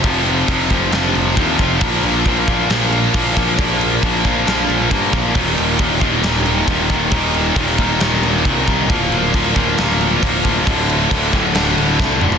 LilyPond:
<<
  \new Staff \with { instrumentName = "Distorted electric guitar" } { \clef bass \time 4/4 \key bes \major \tempo 4 = 136 <f, c f a c' f'>2 <f, c f a c' f'>2 | <bes, f bes d' f' bes'>2 <bes, f bes d' f' bes'>2 | <bes, f bes d' f' bes'>2 <bes, f bes d' f' bes'>2 | <ees, bes, ees g g'>2 <ees, bes, ees g g'>2 |
<ees, bes, ees g g'>2 <ees, bes, ees g g'>2 | <bes, f bes d' f' bes'>2 <bes, f bes d' f' bes'>2 | <d, a, d a f'>2 <d, a, d a f'>2 | }
  \new Staff \with { instrumentName = "Distorted electric guitar" } { \clef bass \time 4/4 \key bes \major <f, c f>4 <f, c f>8 <f, c f>8 <f, c f>4 <f, c f>8 <f, c f>8 | <bes, f bes>4 <bes, f bes>8 <bes, f bes>8 <bes, f bes>4 <bes, f bes>8 <bes, f bes>8 | <bes, f bes>4 <bes, f bes>8 <bes, f bes>8 <bes, f bes>4 <bes, f bes>8 <bes, f bes>8 | <ees, bes, ees>4 <ees, bes, ees>8 <ees, bes, ees>8 <ees, bes, ees>4 <ees, bes, ees>8 <ees, bes, ees>8 |
<ees, bes, ees>4 <ees, bes, ees>8 <ees, bes, ees>8 <ees, bes, ees>4 <ees, bes, ees>8 <ees, bes, ees>8 | <bes, f bes>4 <bes, f bes>8 <bes, f bes>8 <bes, f bes>4 <bes, f bes>8 <bes, f bes>8 | <d, a, d>4 <d, a, d>8 <d, a, d>8 <d, a, d>4 <d, a, d>8 <d, a, d>8 | }
  \new Staff \with { instrumentName = "Distorted electric guitar" } { \clef bass \time 4/4 \key bes \major <f, c f>4 <f, c f>8 <f, c f>8 <f, c f>4 <f, c f>8 <f, c f>8 | <bes, f bes>4 <bes, f bes>8 <bes, f bes>8 <bes, f bes>4 <bes, f bes>8 <bes, f bes>8 | <bes, f bes>4 <bes, f bes>8 <bes, f bes>8 <bes, f bes>4 <bes, f bes>8 <bes, f bes>8 | <ees, bes, ees>4 <ees, bes, ees>8 <ees, bes, ees>8 <ees, bes, ees>4 <ees, bes, ees>8 <ees, bes, ees>8 |
<ees, bes, ees>4 <ees, bes, ees>8 <ees, bes, ees>8 <ees, bes, ees>4 <ees, bes, ees>8 <ees, bes, ees>8 | <bes, f bes>4 <bes, f bes>8 <bes, f bes>8 <bes, f bes>4 <bes, f bes>8 <bes, f bes>8 | <d, a, d>4 <d, a, d>8 <d, a, d>8 <d, a, d>4 <d, a, d>8 <d, a, d>8 | }
  \new Staff \with { instrumentName = "Picked electric bass" } { \clef bass \time 4/4 \key bes \major f,,4 f,,8 f,,8 f,,8 f,,8 ees,8 f,,8 | bes,,8 bes,,8 bes,,8 bes,,8 bes,,4 bes,,8 bes,,8 | bes,,4 bes,,8 bes,,8 bes,,8 bes,,8 g,8 bes,,8 | ees,,8 ees,,8 ees,,8 ees,,8 ees,,4 ees,,8 ees,,8 |
ees,,4 ees,,8 ees,,8 ees,,8 ees,,8 c,8 c,8 | d,,8 d,,8 d,,8 d,,8 d,,4 d,,8 d,,8 | d,,4 d,,8 d,,8 d,,8 d,,8 c,8 d,,8 | }
  \new DrumStaff \with { instrumentName = "Drums" } \drummode { \time 4/4 <cymc bd>8 cymc8 <cymc bd>8 <cymc bd>8 <cymc sn>8 cymc8 <cymc bd>8 <cymc bd>8 | <cymc bd>8 cymc8 <cymc bd>8 <cymc bd>8 <cymc sn>8 cymc8 <cymc bd>8 <cymc bd>8 | <cymc bd>8 cymc8 <cymc bd>8 <cymc bd>8 <cymc sn>8 cymc8 <cymc bd>8 <cymc bd>8 | <cymc bd>8 cymc8 <cymc bd>8 <cymc bd>8 <cymc sn>8 cymc8 <cymc bd>8 <cymc bd>8 |
<cymc bd>8 cymc8 <cymc bd>8 <cymc bd>8 <cymc sn>8 cymc8 <cymc bd>8 <cymc bd>8 | <cymc bd>8 cymc8 <cymc bd>8 <cymc bd>8 <cymc sn>8 cymc8 <cymc bd>8 <cymc bd>8 | <cymc bd>8 cymc8 <cymc bd>8 <cymc bd>8 <cymc sn>8 cymc8 <bd sn>8 toml16 tomfh16 | }
>>